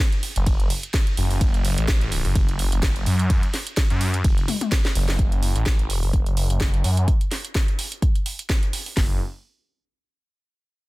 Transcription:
0.12 closed hi-hat soft
0.23 open hi-hat loud
0.36 0.68 F#1 loud
0.36 closed hi-hat medium
0.47 kick loud
0.47 closed hi-hat medium
0.47 ride medium
0.60 closed hi-hat soft
0.70 open hi-hat loud
0.83 closed hi-hat medium
0.94 kick loud
0.94 snare loud
0.94 closed hi-hat medium
0.94 ride medium
1.07 closed hi-hat soft
1.17 1.28 F#1 loud
1.17 open hi-hat loud
1.31 1.39 F#1 loud
1.31 open hi-hat medium
1.41 1.76 F#1 loud
1.41 kick loud
1.41 closed hi-hat medium
1.41 ride medium
1.54 closed hi-hat soft
1.65 open hi-hat loud
1.78 2.23 A1 loud
1.78 closed hi-hat medium
1.88 kick loud
1.88 snare loud
1.88 closed hi-hat medium
1.88 ride medium
2.01 closed hi-hat soft
2.12 open hi-hat loud
2.25 2.70 F#1 loud
2.25 open hi-hat medium
2.35 kick loud
2.35 closed hi-hat medium
2.35 ride medium
2.49 closed hi-hat soft
2.59 open hi-hat loud
2.72 3.05 F#1 loud
2.72 closed hi-hat medium
2.83 kick loud
2.83 snare loud
2.83 closed hi-hat medium
2.83 ride medium
2.96 closed hi-hat soft
3.06 3.41 F#2 loud
3.06 open hi-hat loud
3.19 closed hi-hat medium
3.30 kick loud
3.30 closed hi-hat medium
3.30 ride medium
3.43 closed hi-hat soft
3.54 snare soft
3.54 open hi-hat loud
3.67 closed hi-hat medium
3.77 kick loud
3.77 snare loud
3.77 closed hi-hat medium
3.77 ride medium
3.90 4.23 F#2 loud
3.90 closed hi-hat soft
4.01 open hi-hat loud
4.14 closed hi-hat medium
4.24 4.46 F#1 loud
4.24 kick loud
4.24 closed hi-hat medium
4.24 ride medium
4.38 closed hi-hat soft
4.48 open hi-hat loud
4.48 high tom medium
4.61 closed hi-hat medium
4.61 high tom medium
4.72 kick loud
4.72 snare loud
4.72 closed hi-hat medium
4.72 ride medium
4.85 snare medium
4.85 closed hi-hat soft
4.95 5.17 F#1 loud
4.95 open hi-hat loud
5.09 snare medium
5.09 open hi-hat medium
5.19 5.54 F#1 medium
5.19 kick loud
5.19 closed hi-hat medium
5.32 closed hi-hat soft
5.43 open hi-hat loud
5.56 6.01 A1 loud
5.56 closed hi-hat medium
5.66 kick loud
5.66 snare loud
5.66 closed hi-hat medium
5.79 closed hi-hat soft
5.90 open hi-hat loud
6.03 6.48 F#1 loud
6.03 open hi-hat medium
6.13 kick loud
6.13 closed hi-hat medium
6.26 closed hi-hat soft
6.37 open hi-hat loud
6.50 6.83 F#1 loud
6.50 closed hi-hat medium
6.61 kick loud
6.61 snare loud
6.61 closed hi-hat medium
6.74 closed hi-hat soft
6.84 7.06 F#2 loud
6.84 open hi-hat loud
6.97 closed hi-hat medium
7.08 kick loud
7.08 closed hi-hat medium
7.21 closed hi-hat soft
7.31 snare soft
7.31 open hi-hat loud
7.45 closed hi-hat medium
7.55 kick loud
7.55 snare loud
7.55 closed hi-hat medium
7.68 closed hi-hat soft
7.79 open hi-hat loud
7.92 closed hi-hat medium
8.02 kick loud
8.02 closed hi-hat medium
8.15 closed hi-hat soft
8.26 open hi-hat loud
8.39 closed hi-hat medium
8.50 kick loud
8.50 snare loud
8.50 closed hi-hat medium
8.63 closed hi-hat soft
8.73 open hi-hat loud
8.86 open hi-hat medium
8.97 9.19 F#1 medium
8.97 kick loud
8.97 snare loud
8.97 open hi-hat medium

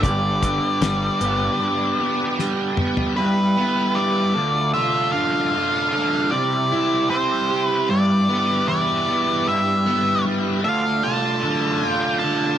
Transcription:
0.00 0.58 G1 medium
0.00 3.14 B3 medium
0.00 3.13 D4 medium
0.00 3.14 G4 medium
0.00 2.34 D5 medium
0.00 kick loud
0.00 closed hi-hat medium
0.05 2.00 G2 medium
0.43 2.40 D3 medium
0.43 kick medium
0.43 closed hi-hat medium
0.81 1.09 G1 medium
0.81 2.39 G3 medium
0.81 snare loud
0.81 closed hi-hat medium
1.21 1.48 G1 medium
1.21 1.99 B3 medium
1.21 closed hi-hat medium
1.60 3.17 D4 medium
2.00 2.78 B3 medium
2.39 3.18 G3 medium
2.39 snare medium
2.77 3.18 B3 medium
2.77 mid tom medium
2.97 floor tom medium
3.16 4.34 G2 medium
3.16 4.34 B3 medium
3.16 4.34 E4 medium
3.16 4.34 G4 medium
3.16 3.98 B4 medium
3.57 4.35 B3 medium
3.95 4.35 G3 medium
3.95 4.70 D5 medium
4.34 6.31 D2 medium
4.34 6.29 A3 medium
4.34 6.30 D4 medium
4.34 6.30 F4 medium
4.74 5.53 F4 medium
4.74 5.12 E5 medium
5.12 5.91 D3 medium
5.12 6.34 F5 loud
5.54 6.32 F4 medium
5.92 6.31 D3 medium
6.31 7.89 C3 medium
6.31 10.61 G3 medium
6.31 7.87 C4 medium
6.31 10.60 E4 medium
6.31 7.10 D5 loud
6.72 7.89 E4 medium
7.10 7.89 C4 medium
7.10 7.66 C5 medium
7.51 7.89 G4 medium
7.66 7.89 B4 medium
7.89 9.46 G2 medium
7.89 10.62 B3 medium
7.89 8.67 D5 medium
8.29 9.07 B3 medium
8.68 9.47 E4 medium
8.68 9.48 D5 medium
9.08 9.47 B3 medium
9.47 10.64 G2 medium
9.47 10.22 E5 medium
9.86 10.65 B3 medium
10.25 10.65 G3 medium
10.64 12.58 D2 medium
10.64 12.58 A3 medium
10.64 12.58 D4 medium
10.64 12.58 F4 medium
10.64 11.05 F5 loud
11.03 11.82 F4 medium
11.03 11.87 A5 loud
11.43 12.22 D3 medium
11.83 12.58 F4 medium
11.83 12.18 G5 loud
12.20 12.58 A5 loud
12.24 12.58 D3 medium

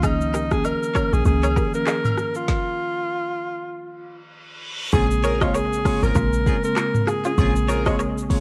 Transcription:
0.00 0.75 C#2 loud
0.00 0.27 D#3 loud
0.00 0.27 F3 medium
0.00 0.28 A#3 medium
0.00 0.28 C#4 loud
0.00 0.54 D#4 loud
0.00 0.14 G#4 loud
0.00 kick loud
0.00 high agogo medium
0.00 shaker medium
0.04 0.15 F4 medium
0.21 shaker medium
0.34 0.45 G4 medium
0.34 0.45 A#4 medium
0.34 shaker medium
0.51 0.92 D#3 medium
0.51 0.92 F3 medium
0.51 0.92 A#3 medium
0.51 0.92 C#4 medium
0.51 0.66 G#4 loud
0.51 kick loud
0.51 cross-stick loud
0.51 shaker soft
0.65 1.15 A#4 loud
0.65 high agogo medium
0.65 low woodblock medium
0.65 shaker medium
0.83 shaker medium
0.95 1.24 D#3 medium
0.95 1.24 F3 medium
0.95 1.24 A#3 medium
0.95 1.24 C#4 medium
0.95 1.06 A#4 medium
0.95 1.06 C#5 medium
0.95 kick loud
0.95 cross-stick medium
0.95 high agogo medium
0.95 shaker medium
1.13 1.22 A#1 medium
1.13 1.26 G#4 loud
1.13 shaker soft
1.25 1.61 C#2 loud
1.25 1.70 D#3 medium
1.25 1.70 F3 medium
1.25 1.70 A#3 medium
1.25 1.70 C#4 loud
1.25 1.71 G#4 loud
1.25 kick medium
1.25 shaker medium
1.43 1.52 A#4 medium
1.43 1.51 C#5 medium
1.43 high agogo medium
1.43 shaker medium
1.56 1.68 G4 medium
1.56 1.67 A#4 medium
1.56 kick loud
1.56 shaker medium
1.74 1.96 D#3 medium
1.74 1.96 F3 medium
1.74 1.96 A#3 medium
1.74 1.96 C#4 medium
1.74 2.37 A#4 loud
1.74 shaker medium
1.87 2.06 F4 medium
1.87 2.05 G#4 medium
1.87 cross-stick medium
1.87 clap medium
1.87 low woodblock medium
1.87 shaker medium
2.05 mid tom medium
2.05 high agogo medium
2.05 shaker medium
2.18 cross-stick medium
2.18 shaker medium
2.35 4.19 F4 loud
2.35 shaker soft
2.48 kick loud
2.48 snare medium
3.71 reverse cymbal medium
4.93 5.99 A#1 loud
4.93 5.17 C#3 loud
4.93 5.07 F3 loud
4.93 5.17 G#3 medium
4.93 5.17 A#3 medium
4.93 5.17 C4 loud
4.93 5.07 C#4 loud
4.93 5.07 G#4 loud
4.93 5.44 G#4 loud
4.93 kick loud
4.93 shaker medium
5.11 shaker medium
5.24 5.38 F3 medium
5.24 5.38 C#4 medium
5.24 5.38 A#4 loud
5.24 5.35 A#4 medium
5.24 5.34 C#5 medium
5.24 shaker medium
5.41 5.82 C#3 medium
5.41 5.82 G#3 medium
5.41 5.52 G#3 medium
5.41 5.82 A#3 medium
5.41 5.82 C4 medium
5.41 5.52 F4 medium
5.41 5.56 F4 medium
5.41 5.50 C5 medium
5.41 5.52 C#5 medium
5.41 5.49 D#5 medium
5.41 kick loud
5.41 cross-stick loud
5.41 shaker soft
5.54 6.05 G#4 loud
5.54 5.73 A#4 medium
5.54 5.73 C#5 medium
5.54 shaker medium
5.73 shaker medium
5.85 6.13 C#3 medium
5.85 5.99 G#3 medium
5.85 6.13 G#3 medium
5.85 6.14 A#3 medium
5.85 6.14 C4 medium
5.85 5.99 F4 medium
5.85 5.99 C#5 medium
5.85 kick loud
5.85 cross-stick loud
5.85 open hi-hat medium
5.85 shaker medium
6.03 6.12 G#1 medium
6.03 6.13 F3 medium
6.03 6.13 C#4 medium
6.03 6.13 A#4 loud
6.03 6.64 A#4 loud
6.03 shaker soft
6.15 6.51 A#1 loud
6.15 6.60 C#3 loud
6.15 6.60 G#3 medium
6.15 6.60 A#3 medium
6.15 6.60 C4 loud
6.15 6.34 F4 medium
6.15 6.34 A#4 medium
6.15 kick medium
6.15 shaker medium
6.33 shaker medium
6.46 6.57 F3 medium
6.46 6.57 C#4 medium
6.46 6.57 G#4 medium
6.46 kick loud
6.46 shaker medium
6.64 6.86 C#3 medium
6.64 6.86 G#3 medium
6.64 6.86 A#3 medium
6.64 6.86 C4 medium
6.64 7.09 A#4 loud
6.64 shaker medium
6.76 6.88 F4 medium
6.76 6.87 A#4 medium
6.76 cross-stick medium
6.76 clap medium
6.76 shaker medium
6.94 mid tom loud
6.94 shaker medium
7.07 7.19 F4 medium
7.07 7.18 G#4 medium
7.07 7.25 G#4 loud
7.07 cross-stick medium
7.07 shaker medium
7.24 7.33 C#4 medium
7.24 7.33 F4 medium
7.24 8.40 G#4 loud
7.24 shaker medium
7.38 8.40 A#1 loud
7.38 7.62 C#3 loud
7.38 7.52 F3 loud
7.38 7.62 G#3 medium
7.38 7.62 A#3 medium
7.38 7.62 C4 loud
7.38 7.52 C#4 loud
7.38 7.52 G#4 loud
7.38 kick loud
7.38 shaker medium
7.56 shaker medium
7.68 7.83 F3 loud
7.68 7.83 C#4 loud
7.68 7.83 A#4 loud
7.68 7.80 A#4 medium
7.68 7.79 C#5 medium
7.68 shaker medium
7.86 8.27 C#3 medium
7.86 8.27 G#3 medium
7.86 7.97 G#3 medium
7.86 8.27 A#3 medium
7.86 8.27 C4 medium
7.86 7.97 F4 medium
7.86 7.95 C5 medium
7.86 7.97 C#5 medium
7.86 7.94 D#5 medium
7.86 kick loud
7.86 cross-stick loud
7.86 shaker soft
7.99 8.18 A#4 medium
7.99 8.18 C#5 medium
7.99 shaker medium
8.18 shaker medium
8.30 8.40 C#3 medium
8.30 8.40 G#3 medium
8.30 8.40 A#3 medium
8.30 8.40 C4 medium
8.30 8.40 F4 medium
8.30 8.40 C#5 medium
8.30 kick loud
8.30 open hi-hat medium
8.30 shaker medium

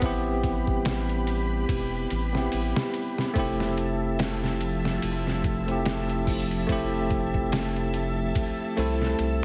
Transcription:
0.00 1.65 A1 medium
0.00 2.33 B3 medium
0.00 0.02 C4 medium
0.00 2.29 C4 medium
0.00 0.04 E4 medium
0.00 2.29 E4 medium
0.00 0.06 G4 medium
0.00 3.31 G4 medium
0.00 3.32 B5 medium
0.00 kick loud
0.00 ride medium
0.06 2.30 G4 loud
0.43 kick medium
0.43 ride medium
0.67 kick medium
0.85 snare loud
0.85 ride medium
1.09 ride soft
1.27 ride medium
1.69 2.06 E1 loud
1.69 kick loud
1.69 ride medium
2.10 2.48 A1 loud
2.10 ride medium
2.33 3.30 B3 medium
2.33 3.31 C4 medium
2.33 3.32 E4 medium
2.33 snare soft
2.38 3.33 G4 medium
2.52 2.74 A1 medium
2.52 ride medium
2.76 snare loud
2.94 ride medium
3.18 snare soft
3.34 4.99 F1 loud
3.34 9.45 F3 medium
3.34 5.61 A3 medium
3.34 5.62 C4 medium
3.34 5.63 E4 medium
3.34 9.45 E5 medium
3.34 9.45 A5 medium
3.34 kick loud
3.34 ride medium
3.39 5.64 G4 medium
3.60 snare soft
3.77 ride medium
4.19 snare loud
4.19 ride medium
4.44 snare soft
4.61 ride medium
4.85 snare soft
5.02 6.66 F1 loud
5.02 ride medium
5.27 snare soft
5.44 kick medium
5.44 ride medium
5.66 6.64 A3 medium
5.66 6.65 C4 medium
5.66 6.65 E4 medium
5.66 ride soft
5.71 6.66 G4 medium
5.85 snare loud
5.85 ride medium
6.10 ride soft
6.27 kick medium
6.27 open hi-hat medium
6.51 ride soft
6.67 8.32 F1 medium
6.67 8.73 A3 medium
6.67 8.74 C4 medium
6.67 8.75 E4 medium
6.67 kick loud
6.67 ride medium
6.72 8.75 G4 loud
7.10 kick medium
7.10 ride medium
7.34 kick medium
7.52 snare loud
7.52 ride medium
7.76 ride soft
7.94 ride medium
8.35 kick loud
8.35 ride medium
8.77 9.15 C2 medium
8.77 9.45 A3 medium
8.77 9.45 C4 medium
8.77 9.45 E4 medium
8.77 9.45 A4 loud
8.77 ride medium
9.02 snare soft
9.19 9.45 C2 medium
9.19 ride medium

